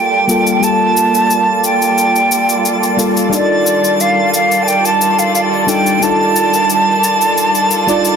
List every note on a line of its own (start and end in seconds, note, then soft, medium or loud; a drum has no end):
0.00 0.24 G3 medium
0.00 8.16 G3 medium
0.00 0.25 A#3 medium
0.00 3.28 A#3 medium
0.00 0.25 F4 medium
0.00 8.16 F4 medium
0.00 0.26 A4 medium
0.00 8.16 A4 medium
0.00 8.16 D5 medium
0.00 0.65 G5 medium
0.00 8.16 A5 medium
0.27 0.58 G3 medium
0.27 0.58 A#3 medium
0.27 0.59 F4 medium
0.27 0.59 A4 medium
0.27 cabasa medium
0.47 cabasa soft
0.60 2.93 G3 medium
0.60 2.94 A#3 medium
0.60 2.95 F4 medium
0.60 cabasa soft
0.64 2.96 A4 medium
0.64 1.64 A5 loud
0.97 cabasa medium
1.14 cabasa soft
1.30 cabasa soft
1.64 2.95 G5 medium
1.64 cabasa medium
1.82 cabasa soft
1.98 cabasa soft
2.16 cabasa soft
2.32 cabasa medium
2.49 cabasa soft
2.65 cabasa soft
2.83 cabasa soft
2.97 3.27 G3 medium
2.97 3.28 A#3 medium
2.97 3.28 F4 medium
2.97 3.29 A4 medium
2.97 cabasa medium
3.17 cabasa soft
3.29 8.16 D#3 medium
3.29 5.63 G3 medium
3.29 5.63 D4 medium
3.29 5.64 D#4 medium
3.29 5.65 F4 medium
3.29 cabasa soft
3.34 5.65 A4 medium
3.34 4.02 D5 medium
3.67 cabasa medium
3.84 cabasa soft
4.00 4.34 F5 medium
4.00 cabasa soft
4.34 4.65 F5 medium
4.34 cabasa medium
4.51 cabasa soft
4.63 4.69 A5 medium
4.67 4.87 G5 medium
4.67 cabasa soft
4.85 5.20 A5 medium
4.85 cabasa soft
5.01 cabasa medium
5.19 5.34 F5 medium
5.19 cabasa soft
5.35 5.41 F5 medium
5.35 cabasa soft
5.62 5.70 A5 medium
5.66 5.97 G3 medium
5.66 5.98 D4 medium
5.66 5.98 D#4 medium
5.66 5.98 F4 medium
5.66 5.98 A4 medium
5.66 6.04 G5 medium
5.66 cabasa medium
5.86 cabasa soft
5.99 7.83 G3 medium
5.99 7.84 D4 medium
5.99 7.84 D#4 medium
5.99 7.85 F4 medium
5.99 8.16 A5 loud
5.99 cabasa soft
6.04 7.86 A4 medium
6.36 cabasa medium
6.53 cabasa soft
6.70 cabasa soft
7.04 cabasa medium
7.21 cabasa soft
7.38 cabasa soft
7.55 cabasa soft
7.71 cabasa medium
7.87 8.06 G3 medium
7.87 8.07 D4 medium
7.87 8.07 D#4 medium
7.87 8.07 F4 medium
7.87 8.08 D5 medium
7.87 cabasa soft
8.05 cabasa soft